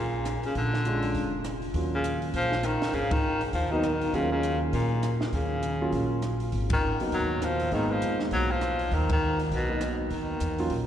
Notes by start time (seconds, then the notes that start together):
Already playing: A#1 F#3 A#3 C#4 F4
0.00 A#2
0.25 cross-stick, closed hi-hat
0.43 C#3, muted upright bass stroke, open hi-hat
0.55 A#1 D3, kick, open hi-hat
0.74 snare
0.85 G#3 C#4 D4 F4, closed hi-hat
1.02 open hi-hat
1.14 F1, kick, open hi-hat
1.44 cross-stick, closed hi-hat
1.62 open hi-hat
1.74 D#2 F#3 A#3 C#4 F4, kick, open hi-hat
1.95 C#3
2.04 closed hi-hat
2.22 open hi-hat
2.34 A#1 F3, kick, open hi-hat
2.52 snare
2.63 D#3, cross-stick, closed hi-hat
2.82 muted upright bass stroke, snare, open hi-hat
2.93 G#1 C#3, kick, open hi-hat
3.11 D#3, kick, ride
3.41 open hi-hat
3.53 D#2 F3, kick, open hi-hat
3.72 D#3 F#3 A#3 B3 D#4
3.83 cross-stick, closed hi-hat
4.01 open hi-hat
4.13 D#2 C#3 F#3 A#3 C#4 F4, kick, open hi-hat
4.32 C#3
4.43 closed hi-hat
4.73 A#2, kick, open hi-hat
5.03 cross-stick, closed hi-hat
5.21 snare
5.33 D#2 C#3, kick, open hi-hat
5.63 closed hi-hat
5.82 F#3 A#3 C#4 F4
5.92 A#1, kick, open hi-hat
6.22 cross-stick, closed hi-hat
6.40 open hi-hat
6.52 G#1, kick, open hi-hat
6.70 D#3, kick, ride
7.00 F#3 A#3 B3 D#4, muted upright bass stroke, open hi-hat
7.12 D#2 F#3, kick, open hi-hat
7.42 F3, cross-stick, closed hi-hat
7.60 open hi-hat
7.72 G#1 D#3 G#3 A#3 B3 D#4, kick, open hi-hat
7.92 F3
8.02 D#2, closed hi-hat
8.19 snare
8.31 B1 F#3, kick, open hi-hat
8.51 F3
8.61 cross-stick, closed hi-hat
8.79 open hi-hat
8.91 D#2 D#3, kick, open hi-hat
9.09 D#3, kick, ride
9.39 open hi-hat
9.51 B1 B2, kick, open hi-hat
9.69 F#3 A#3 B3 D#4
9.81 cross-stick, closed hi-hat
10.10 D#2 D#3, kick, open hi-hat
10.40 E2, closed hi-hat
10.58 F#3 A#3 C#4 F4, open hi-hat
10.70 A#1, kick, open hi-hat